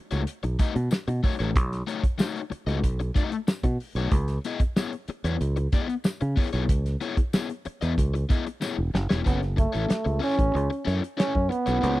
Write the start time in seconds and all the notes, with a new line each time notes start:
0.11 C#2 A3 D#4 F#4 C#5, closed hi-hat
0.27 closed hi-hat
0.43 B1, muted overdriven electric guitar stroke, closed hi-hat
0.59 A3 D#4 F#4 D#5, kick, closed hi-hat
0.75 B2, muted overdriven electric guitar stroke, closed hi-hat
0.91 muted overdriven electric guitar stroke, snare, tambourine
1.08 B2, muted overdriven electric guitar stroke, closed hi-hat
1.23 A3 D#4 F#4 C#5, kick, open hi-hat
1.39 A1 A3 D#4 F#4 C#5, snare, closed hi-hat
1.56 B1, kick, closed hi-hat
1.73 snare, closed hi-hat
1.87 A3 D#4 F#4 C#5, closed hi-hat
2.03 muted fingered electric bass stroke, kick, closed hi-hat
2.18 A3 D#4 F#4 C#5, snare, tambourine
2.36 closed hi-hat
2.50 muted overdriven electric guitar stroke, muted fingered electric bass stroke, closed hi-hat
2.67 C#2 A3 D#4 F#4 D#5, closed hi-hat
2.84 B1, kick, closed hi-hat
3.00 muted overdriven electric guitar stroke, closed hi-hat
3.15 A3 D#4 F#4 D#5, kick, closed hi-hat
3.32 muted overdriven electric guitar stroke, closed hi-hat
3.48 muted overdriven electric guitar stroke, snare, tambourine
3.63 B2, muted overdriven electric guitar stroke, kick, closed hi-hat
3.80 open hi-hat
3.95 B1 A3 D#4 F#4 C#5, snare, closed hi-hat
4.11 C#2, kick, closed hi-hat
4.28 snare, closed hi-hat
4.44 B3 E4 G#4 D#5, closed hi-hat
4.60 muted fingered electric bass stroke, kick, closed hi-hat
4.77 B3 E4 G#4 C#5, snare, tambourine
4.93 closed hi-hat
5.08 muted fingered electric bass stroke, muted overdriven electric guitar stroke, closed hi-hat
5.24 E2 B3 E4 G#4 C#5, closed hi-hat
5.41 C#2, closed hi-hat
5.56 muted overdriven electric guitar stroke, closed hi-hat
5.72 B3 E4 G#4 D#5, kick, closed hi-hat
5.88 muted overdriven electric guitar stroke, closed hi-hat
6.04 muted overdriven electric guitar stroke, snare, tambourine
6.21 C#3, muted overdriven electric guitar stroke, closed hi-hat
6.36 B3 E4 G#4 C#5, kick, open hi-hat
6.53 B1 B3 E4 G#4 C#5, snare, closed hi-hat
6.69 C#2, kick, closed hi-hat
6.86 snare, closed hi-hat
7.01 B3 E4 G#4 C#5, closed hi-hat
7.17 muted fingered electric bass stroke, kick, closed hi-hat
7.33 B3 E4 G#4 C#5, snare, tambourine
7.49 closed hi-hat
7.65 muted overdriven electric guitar stroke, muted fingered electric bass stroke, closed hi-hat
7.81 E2 B3 E4 G#4 D#5, closed hi-hat
7.98 C#2, kick, closed hi-hat
8.14 muted overdriven electric guitar stroke, closed hi-hat
8.29 B3 E4 G#4 D#5, kick, closed hi-hat
8.47 muted overdriven electric guitar stroke, closed hi-hat
8.61 B3 E4 G#4 C#5, snare, tambourine
8.78 E1
8.94 F#1, muted overdriven electric guitar stroke, snare
9.09 E1 B3 E4 G#4 C#5, snare
9.24 F#1 B3 C#4 E4 A4 C#5, kick, closed hi-hat
9.42 snare, closed hi-hat
9.57 A3, muted overdriven electric guitar stroke, kick, closed hi-hat
9.73 A1 C#4 E4 A4 C#5, closed hi-hat
9.89 muted overdriven electric guitar stroke, snare, closed hi-hat
10.05 C#2, muted overdriven electric guitar stroke, closed hi-hat
10.20 C#4 E4 A4 C#5, open hi-hat
10.37 A1, muted overdriven electric guitar stroke, kick, closed hi-hat
10.54 C#2, muted overdriven electric guitar stroke, closed hi-hat
10.70 muted overdriven electric guitar stroke, closed hi-hat
10.85 F#2 C#4 E4 A4 C#5, closed hi-hat
11.02 muted overdriven electric guitar stroke, closed hi-hat
11.17 C#4 E4 A4 C#5, snare, closed hi-hat
11.35 F#2, kick
11.50 B3, muted overdriven electric guitar stroke, closed hi-hat
11.66 B1 C#4 E4 A4 C#5, snare, closed hi-hat
11.81 C#2 A#3 D#4 G4 C5, closed hi-hat
11.94 B3 E4 G#4 C#5